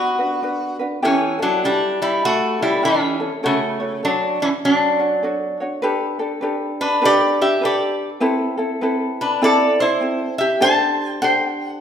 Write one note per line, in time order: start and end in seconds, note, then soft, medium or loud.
0.00 0.76 B3 medium
0.00 0.20 D4 soft
0.00 0.19 F#4 soft
0.00 0.76 F#4 medium
0.00 0.17 B4 medium
0.18 0.41 D4 soft
0.18 0.42 F#4 medium
0.18 0.42 B4 medium
0.42 0.80 D4 soft
0.42 0.79 F#4 medium
0.42 0.78 B4 medium
0.79 1.02 D4 soft
0.79 1.03 F#4 medium
0.79 1.03 B4 medium
1.02 1.38 E3 medium
1.02 1.40 C#4 medium
1.02 1.38 C#4 medium
1.02 1.39 E4 medium
1.02 1.40 G4 medium
1.02 1.38 A4 medium
1.39 1.63 F#3 medium
1.39 1.64 D4 medium
1.39 1.62 E4 soft
1.39 1.62 A4 medium
1.64 1.98 G3 medium
1.64 2.02 D4 medium
1.64 2.59 E4 medium
1.64 2.59 A4 medium
2.02 2.22 G3 medium
2.02 2.25 E4 medium
2.25 2.59 A3 medium
2.25 2.62 F#4 loud
2.59 2.83 G3 medium
2.59 2.82 C#4 soft
2.59 2.83 E4 soft
2.59 2.85 E4 medium
2.59 2.82 A4 medium
2.82 3.29 E3 medium
2.82 3.20 C#4 medium
2.82 3.29 C#4 medium
2.82 3.19 E4 medium
2.82 3.19 G4 medium
2.82 3.18 A4 medium
3.20 3.43 C#4 soft
3.20 3.43 E4 soft
3.20 3.42 A4 medium
3.43 4.00 C#3 medium
3.43 4.00 A3 medium
3.43 3.79 F#4 medium
3.43 3.80 A4 medium
3.43 3.79 C#5 medium
3.80 4.03 F#4 soft
3.80 4.03 C#5 medium
4.03 4.38 F#3 medium
4.03 4.42 D4 medium
4.03 4.99 F#4 medium
4.03 5.23 A4 soft
4.03 4.98 C#5 medium
4.42 4.48 E3 medium
4.42 4.48 C#4 medium
4.65 5.57 F#3 medium
4.65 5.57 D4 medium
4.99 5.22 D4 soft
4.99 5.23 F#4 soft
4.99 5.22 C#5 soft
5.23 5.60 D4 soft
5.23 5.60 F#4 medium
5.23 5.60 A4 medium
5.23 5.59 C#5 medium
5.60 5.82 D4 soft
5.60 5.83 F#4 soft
5.60 5.83 C#5 medium
5.82 6.20 D4 medium
5.82 6.19 G4 loud
5.82 6.18 A4 medium
5.82 6.19 B4 medium
6.19 6.41 D4 soft
6.19 6.41 G4 soft
6.19 6.42 A4 medium
6.41 7.01 D4 medium
6.41 7.02 G4 medium
6.41 7.03 A4 medium
6.41 7.01 B4 medium
6.81 7.02 D4 medium
6.81 7.04 B4 medium
7.02 7.61 D4 medium
7.02 7.62 G4 medium
7.02 7.38 G4 medium
7.02 7.63 A4 medium
7.02 7.61 B4 medium
7.02 7.41 D5 loud
7.42 7.62 G4 medium
7.42 7.64 E5 medium
7.61 8.20 D4 medium
7.61 8.21 G4 medium
7.61 8.09 G4 medium
7.61 8.21 A4 medium
7.61 8.20 B4 medium
7.61 8.09 D5 medium
8.20 8.58 C4 loud
8.20 8.57 E4 loud
8.20 8.56 A4 loud
8.20 8.58 B4 medium
8.57 8.81 C4 soft
8.57 8.82 E4 medium
8.57 8.81 A4 medium
8.81 9.41 C4 medium
8.81 9.41 E4 medium
8.81 9.43 A4 medium
8.81 9.41 B4 medium
9.21 9.42 D4 medium
9.21 9.43 B4 medium
9.41 10.00 C4 medium
9.41 10.01 E4 medium
9.41 10.02 A4 loud
9.41 9.78 A4 medium
9.41 9.81 D5 loud
9.80 10.36 E4 medium
9.80 10.38 C5 medium
10.01 10.61 C4 medium
10.01 10.61 E4 medium
10.01 10.60 A4 medium
10.38 10.61 G4 medium
10.38 10.62 E5 medium
10.60 11.22 D4 medium
10.60 11.21 G4 medium
10.60 11.21 A4 medium
10.60 11.21 C5 loud
10.60 11.09 A5 loud
10.65 11.19 C5 medium
11.09 11.22 G5 loud
11.22 11.81 D4 medium
11.22 11.81 G4 medium
11.22 11.80 A4 medium
11.22 11.81 C5 medium
11.22 11.78 C5 medium
11.22 11.66 G5 medium
11.66 11.81 F#5 medium